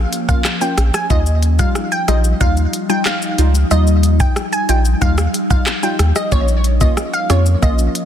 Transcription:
Already playing: F3 A#3 C#4
0.13 closed hi-hat, shaker
0.29 A#3 C#4 F4 F5, kick, shaker
0.45 cross-stick, clap, shaker
0.61 A#3 C#4 F4 G5, shaker
0.78 A#1, cross-stick, closed hi-hat, shaker
0.94 G#5, cross-stick, shaker
1.10 D#2 F3 G3 D#4 F4 D#5, kick, shaker
1.26 shaker
1.43 closed hi-hat, shaker
1.59 G3 D#4 F4 F5, kick, shaker
1.75 cross-stick, shaker
1.92 G5, shaker
2.08 A#1 G3 D#4 F4 D#5, cross-stick, closed hi-hat, shaker
2.24 shaker
2.40 D#2 G3 D#4 F4 F5, kick, shaker
2.57 shaker
2.73 closed hi-hat, shaker
2.89 G3 D#4 F4 G5, shaker
3.06 F5, cross-stick, clap, shaker
3.22 shaker
3.38 C#2 G3 D#4 F4, closed hi-hat, shaker
3.55 shaker
3.71 D#2 G3 D#4 F4 D#5, shaker
3.87 shaker
4.03 closed hi-hat, shaker
4.20 G5, kick, shaker
4.36 cross-stick, shaker
4.53 G#5, shaker
4.69 A#1 G3 D#4 F4 G5, closed hi-hat, shaker
4.85 shaker
5.01 D#2 G3 D#4 F4 F5, kick, shaker
5.18 cross-stick, shaker
5.34 closed hi-hat, shaker
5.50 G3 D#4 F4 F5, kick, shaker
5.66 cross-stick, clap, shaker
5.83 G3 D#4 F4 G5, shaker
5.99 D#2, cross-stick, closed hi-hat, shaker
6.16 D#5, cross-stick, shaker
6.32 A#1 F3 A#3 C#4 F4 C#5, kick, shaker
6.48 shaker
6.64 closed hi-hat, shaker
6.81 A#3 C#4 F4 D#5, kick, shaker
6.97 cross-stick, shaker
7.13 F5, shaker
7.30 F2 A#3 C#4 F4 C#5, cross-stick, closed hi-hat, shaker
7.46 shaker
7.62 A#1 A#3 C#4 F4 D#5, kick, shaker
7.79 shaker
7.95 closed hi-hat, shaker

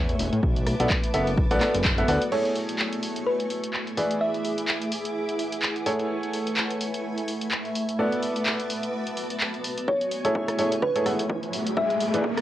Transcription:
Already playing: E2 A3 C#5 E5 G#5 B5 C#6
0.09 closed hi-hat
0.19 E1, open hi-hat
0.33 A2, closed hi-hat
0.43 B1 B3 B4 A5 D6, kick
0.56 closed hi-hat
0.67 cross-stick, open hi-hat
0.80 B1 B3 F#4 A4 B4 D5, closed hi-hat
0.85 F#4
0.90 kick, clap
1.04 closed hi-hat
1.14 F#1 B3 F#4 A4 B4 E5, open hi-hat
1.27 open hi-hat
1.38 kick
1.51 B1 B3 F#4 A4 B4 D5, closed hi-hat
1.61 B3 F#4 A4 B4 D5, cross-stick, clap, open hi-hat
1.74 F#1, closed hi-hat
1.85 kick, clap
1.98 B3 F#4 A4 B4 E5, closed hi-hat
2.08 D2 F#4 A4 B4 D5, open hi-hat
2.22 closed hi-hat
2.32 A3 E4 G#4 A4 C#5 G#5 C#6, crash
2.45 closed hi-hat
2.56 open hi-hat
2.69 E5, closed hi-hat
2.79 clap
2.93 closed hi-hat
3.03 open hi-hat
3.07 B5
3.16 closed hi-hat
3.27 B4
3.40 closed hi-hat
3.50 open hi-hat
3.63 closed hi-hat
3.74 clap
3.87 closed hi-hat
3.97 E3 E4 G#4 B4 D5 E5 D6, open hi-hat
4.11 closed hi-hat
4.21 E5
4.34 F#5, closed hi-hat
4.45 open hi-hat
4.52 B4
4.58 closed hi-hat
4.68 clap
4.82 G#5, closed hi-hat
4.92 open hi-hat
5.05 closed hi-hat
5.29 closed hi-hat
5.39 open hi-hat
5.52 closed hi-hat
5.62 clap
5.76 closed hi-hat
5.86 A3 E4 G#4 A4 C#5 G#5 C#6, open hi-hat
6.00 closed hi-hat
6.23 E5, closed hi-hat
6.32 B5, open hi-hat
6.47 closed hi-hat
6.57 clap
6.71 closed hi-hat
6.81 open hi-hat
6.94 closed hi-hat
7.18 closed hi-hat
7.28 open hi-hat
7.41 closed hi-hat
7.51 clap
7.65 closed hi-hat
7.75 open hi-hat
7.89 closed hi-hat
7.99 B3 F#4 A4 B4 D5 A5 D6
8.12 closed hi-hat
8.22 open hi-hat
8.29 F#4
8.36 closed hi-hat
8.46 clap
8.59 closed hi-hat
8.70 open hi-hat
8.83 closed hi-hat
9.07 closed hi-hat
9.17 open hi-hat
9.30 closed hi-hat
9.40 clap
9.54 closed hi-hat
9.64 open hi-hat
9.78 closed hi-hat
9.88 A3 C#5 G#5 C#6, kick, riser
10.01 closed hi-hat
10.11 open hi-hat
10.25 A3 E4 G#4 A4 C#5, closed hi-hat
10.34 B5, kick
10.45 E5, cross-stick, closed hi-hat
10.59 A3 E4 G#4 A4 C#5, open hi-hat
10.72 closed hi-hat
10.82 B4, kick
10.96 A3 E4 G#4 A4 C#5, closed hi-hat
11.06 A3 E4 G#4 A4 F#5, cross-stick, open hi-hat
11.19 closed hi-hat
11.30 kick
11.43 closed hi-hat
11.53 E4 G#4 E5 D6, open hi-hat
11.67 closed hi-hat
11.75 B4 E5 F#5, kick
11.90 closed hi-hat
12.01 open hi-hat
12.14 E3 E4 G#4 B4 D5, closed hi-hat
12.24 kick
12.38 cross-stick, closed hi-hat

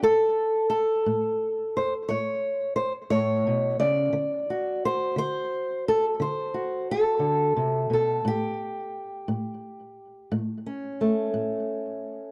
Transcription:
0.03 A2 A4
0.70 A4
1.06 A2
1.77 C5
2.09 A2 C#5
2.76 C5
3.10 A2 C#5
3.47 B2
3.80 C#3 D5
4.13 D3
4.50 F#4
4.85 C5
5.16 D3 C5
5.88 A4
6.20 D3 C5
6.54 F#4
6.91 A4
7.19 D3
7.57 C3
7.90 B2 A4
8.25 A2 G4
9.28 A2
10.32 A2
10.66 C#4
11.01 A3
11.34 A2

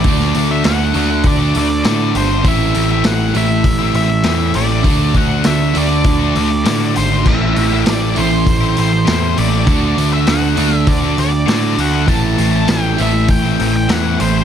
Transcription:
Already playing: D5
0.04 D2 D3 A3 D4, kick, open hi-hat
0.09 F#4
0.20 snare
0.34 D2 D3 A3 D4 F#4, open hi-hat
0.49 A3 D4 F#4 E5
0.64 D2 D3 A3 D4 F#5, snare, open hi-hat
0.68 F#4
0.94 D2 D3 A3 D4, open hi-hat
0.98 F#4
1.10 muted overdriven electric guitar stroke
1.23 D2, kick, open hi-hat
1.27 D5
1.38 A3 D4 F#4
1.55 D2 D5, open hi-hat
1.70 muted overdriven electric guitar stroke
1.84 A2 D3 A3 D4 F#4, snare, open hi-hat
2.14 G1 D3 A3 D4 F#4 C5, open hi-hat
2.29 A3 D4 F#4
2.44 A1 A2 E3 A3 C4 E4, kick, open hi-hat
2.48 E5
2.74 A1 E3 A3 C4 E4, open hi-hat
2.89 C4 E4 E5
2.93 A3
3.04 A1 A2 E3 A3 C4 E4 F#5, snare, open hi-hat
3.34 A1 A2 E3 A3 C4 E4 E5, open hi-hat
3.50 muted overdriven electric guitar stroke
3.64 A1, kick, open hi-hat
3.79 A3 C4 E4
3.94 A1 E5, open hi-hat
4.09 muted overdriven electric guitar stroke
4.23 E2 A2 E3 A3 C4, snare, open hi-hat
4.28 E4
4.54 A1 E3 A3 C4 E4 D5, open hi-hat
4.69 A3 C4 E4
4.84 D2 D3 A3 D4 F#4, kick, open hi-hat
5.14 D2 D3 A3 D4 F#4 F#5, kick, open hi-hat
5.29 A3 D4 F#4
5.43 D2 D3 A3 D4 E5, snare, open hi-hat
5.47 F#4
5.74 D2 D3 A3 D4 F#4 D5, open hi-hat
5.90 muted overdriven electric guitar stroke
6.04 D2, kick, open hi-hat
6.19 A3 D4 F#4
6.35 D2, open hi-hat
6.51 muted overdriven electric guitar stroke
6.65 A2 D3 A3 D4 F#4, snare, open hi-hat
6.95 G#1 D3 A3 D4 F#4 C5, open hi-hat
7.10 A3 D4 F#4
7.24 A1 A2 E3 A3 C4 E4 E5, kick, crash
7.55 A1 E3 A3 C4 E4, open hi-hat
7.70 A3 C4 E4
7.74 E5
7.85 A1 A2 E3 A3 C4 E4, snare, open hi-hat
7.90 D5
8.16 A1 A2 E3 A3 C4 C5, open hi-hat
8.20 E4
8.32 muted overdriven electric guitar stroke
8.46 A1, kick, open hi-hat
8.61 A3 C4 E4
8.77 A1 C5, open hi-hat
8.92 muted overdriven electric guitar stroke
9.05 E2 A2 E3 A3 C4 E4, snare, open hi-hat
9.35 A1 E3 A3 C4 E4 D5, open hi-hat
9.51 A3 C4 E4
9.66 D2 D3 A3 D4 F#4, kick, open hi-hat
9.96 D2 D3 A3 D4 F#4, open hi-hat
10.11 A3 D4 F#4 E5
10.26 D2 D3 A3 D4 F#4 F#5, snare, open hi-hat
10.56 D2 D3 A3 D4, open hi-hat
10.60 F#4
10.72 E5, muted overdriven electric guitar stroke
10.87 D2 D5, kick, open hi-hat
11.01 A3 D4 F#4
11.18 D2 D5, open hi-hat
11.32 muted overdriven electric guitar stroke
11.46 A2 D3 A3 D4 F#4, snare, open hi-hat
11.77 D2 D3 A3 D4 F#4 F#5, open hi-hat
11.91 D4 F#4
11.95 A3
12.05 A1 A2 E3 A3 C4 E4, kick, open hi-hat
12.09 A5
12.35 A1 E3 A3 C4 E4, open hi-hat
12.51 A3 C4 E4
12.56 A5
12.67 A1 A2 E3 A3 C4 E4, snare, open hi-hat
12.71 G5
12.97 A1 A2 E3 A3 C4 E4, open hi-hat
13.02 E5
13.13 muted overdriven electric guitar stroke
13.28 A1 G5, kick, open hi-hat
13.42 A3 C4 E4
13.59 A1, open hi-hat
13.74 G5, muted overdriven electric guitar stroke
13.88 E2 A2 E3 A3 C4 E4 F#5, snare, open hi-hat
14.19 A1 E3 A3 C4 E4 C5, open hi-hat
14.33 A3 C4 E4

